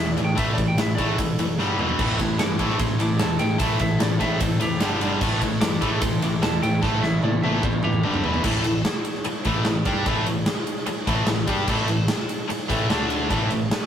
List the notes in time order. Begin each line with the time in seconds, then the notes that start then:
Already playing: E1 A2 E3 E5
0.11 D5
0.17 A2 E3, ride
0.24 G5
0.35 A1 A2 E3 A3 E5, kick, ride
0.53 A2 E3 D5
0.58 A1, kick, ride
0.68 G5
0.78 A1 A2 E3 E5, snare, ride
0.95 A1 A2 E3 A3 D5, kick, ride
1.08 A4
1.18 A1 A2 E3, kick, ride
1.38 F#1 A2 E3, ride
1.59 G1 G2 D3 G3, snare
1.79 E1 E2 B2 E3, mid tom
1.89 floor tom
1.99 A1 A2 E3 A3 C4 E4 A4, kick, crash
2.17 A1 A2 E3 A3 C4 E4 A4, kick, ride
2.37 G2 A2 E3 A3 C4 E4 A4 D6, snare, ride
2.57 A1 A2 E3 A3 C4 E4 A4, kick, ride
2.70 snare
2.78 A1 A2 E3 A3 C4 E4 A4 C6, kick, ride
2.97 A1 A2 E3 A3 C4 E4 A4 D6, ride
3.18 E1 A2 E3 A3 C4 E4 A4 A5, snare, ride
3.38 A2 E3 A3 C4 E4 A4 G5, ride
3.59 A1 A2 E3 A3 C4 E4 A4 A5, kick, ride
3.79 A1 A2 E3 A3 C4 E4 A4 E5, kick, ride
3.99 A1 A2 E3 A3 C4 E4 A4 D5, snare, ride
4.19 A1 A2 E3 A3 C4 E4 A4 E5, kick, ride
4.40 A1 A2 E3 A3 C4 E4 A4 C5, kick, ride
4.59 F1 A2 E3 A3 C4 E4 G4 A4, ride
4.80 G1 G2 D3 G3 D4 G4 D5, snare, ride
5.01 G1 G2 D3 G3 D4 G4 D5, ride
5.21 A1 A2 E3 A3 C4 E4 A4, kick, crash
5.41 A1 A2 E3 A3 C4 E4 A4, kick, ride
5.61 G2 A2 E3 A3 C4 E4 A4 D6, snare, ride
5.81 A1 A2 E3 A3 C4 E4 A4, kick, ride
6.01 A1 A2 E3 A3 C4 E4 A4 C6, kick, ride
6.21 A1 A2 E3 A3 C4 E4 A4 D6, ride
6.42 E1 A2 E3 A3 C4 E4 A4 A5, snare, ride
6.62 A2 E3 A3 C4 E4 A4 G5, ride
6.81 A1 A2 E3 A3 C4 E4 A4 A5, kick, snare
7.02 A1 A2 E3 A3 C4 E4 A4 E5, snare
7.21 A1 A2 E3 A3 C4 E4 A4 D5, high tom
7.41 A1 A2 E3 A3 C4 E4 A4 E5, high tom
7.62 A1 A2 E3 A3 C4 E4 A4 C5, kick, mid tom
7.73 mid tom
7.83 A1 A2 E3 A3 C4 E4 G4 A4, mid tom
7.93 mid tom
8.03 G1 G2 D3 G3 D4 G4 D5, mid tom
8.14 floor tom
8.23 E1 E2 B2 E3 B3 E4 B4, floor tom
8.34 floor tom
8.43 A1 A2 E3 A3, kick, crash
8.64 A1 A2 E3, ride
8.85 snare, ride
9.05 ride
9.15 snare
9.24 muted distorted electric guitar stroke, muted picked electric bass stroke, ride
9.44 A1 A2 E3 A3, kick, ride
9.65 A1 A2 E3, snare, ride
9.85 G2 G3 D4 G4, kick, ride
10.05 A1 A2 E3 A3, kick, ride
10.26 A1 A2 E3, ride
10.46 snare, ride
10.67 ride
10.77 snare
10.86 muted picked electric bass stroke, muted distorted electric guitar stroke, ride
11.05 A1 A2 E3 A3, kick, ride
11.27 A1 A2 E3, snare, ride
11.47 G2 G3 D4 G4, kick, ride
11.67 A1 A2 E3 A3, kick, crash
11.88 A1 A2 E3, ride
12.08 snare, ride
12.29 ride
12.49 muted picked electric bass stroke, muted distorted electric guitar stroke, ride
12.69 A1 A2 E3 A3, kick, ride
12.89 D2 D3 A3 D4, snare, ride
13.10 ride
13.30 A1 A2 E3 A3, kick, ride
13.50 A1 A2 E3, ride
13.71 snare, ride